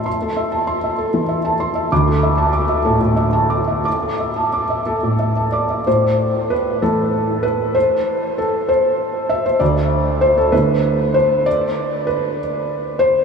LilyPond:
<<
  \new Staff \with { instrumentName = "Felt piano" } { \time 6/8 \key a \minor \tempo 4. = 64 << { <e'' c'''>16 a'16 e''16 a''16 c'''16 e''16 a'16 e16 e''16 a''16 c'''16 e''16 | d'''16 a'16 e''16 a''16 d'''16 e''16 a'16 a,16 e''16 a''16 d'''16 e''16 | d'''16 a'16 e''16 a''16 d'''16 e''8 a,16 e''16 a''16 d'''16 e''16 | r2. |
r2. | r2. | r2. | } \\ { r2. | r2. | r4. a'4 d''8 | c''4 b'8 a'4 b'8 |
c''4 a'8 c''4 e''16 c''16 | d''4 c''16 a'16 b'4 c''8 | d''4 b'8 r4 c''8 | } >> }
  \new Staff \with { instrumentName = "Felt piano" } { \clef bass \time 6/8 \key a \minor a2. | d,4. a,4.~ | a,2. | a,4. <e a e'>4.~ |
<e a e'>2. | d,4. <d a e'>4.~ | <d a e'>2. | }
>>